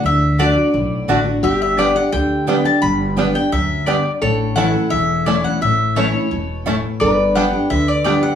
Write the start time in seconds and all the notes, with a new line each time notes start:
Already playing: F#4
0.03 D2 D3 E5
0.38 D3 A3 D4 F#4 D5 A5
0.56 D4 F#4
0.74 B1 A2
1.08 A1 D3 A3 D4 F#4 D5 A5
1.25 D4 F#4
1.43 G1 G2 G4 E5
1.62 E5
1.77 G3 B3 D4 G4 D5 G5
1.95 D4 G4 F#5
2.12 D2 D3 G5
2.47 G3 B3 D4 G4 D5 G5
2.65 D4 G4 A5
2.82 G1 G2 B5
3.05 F#4
3.16 G3 B3 D4 G4 D5 G5
3.35 D4 G4 G5
3.52 D2 F#2 E5
3.86 G2 G3 B3 D4 G4 D5 G5
4.22 A1 A2 A4 C#5
4.55 E3 A3 C#4 E4 C#5 F#5 A5
4.74 C#4 E4
4.90 E1 E2 E5
5.26 E3 A3 C#4 E4 C#5 D5 A5
5.44 C#4 E4 F#5
5.61 A1 A2 E5
5.95 E3 A3 C#4 E4 C#5 A5
6.14 C#4 E4
6.31 E1 B2
6.66 A2 A3 C#4 E4 C#5 A5
7.00 G1 G2 B4 D5
7.35 G3 B3 D4 G4 D5 F#5 G5
7.53 D4 G4
7.70 D2 D3 E5
7.88 D5
8.04 G3 B3 D4 G4 D5 G5
8.22 D4 G4 F#5